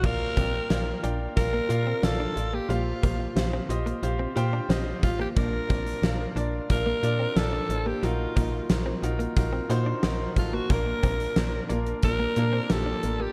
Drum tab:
CC |x---------------|----------------|----------------|----------------|
HH |--x-x-x-x-x-x-x-|x-x-x-xxx-x-x-x-|x-xxx-x-x-x-x-x-|x-x-x-xxx-x-x-x-|
SD |----o-------o---|----o-------o---|----o-------o---|----o-------o---|
BD |o-o-----o-------|--o-----------o-|o-o-----o-------|--o-----o-----o-|

CC |----------------|
HH |x-xxx-xxx-x-x-x-|
SD |----o-------o---|
BD |o-o-----o-------|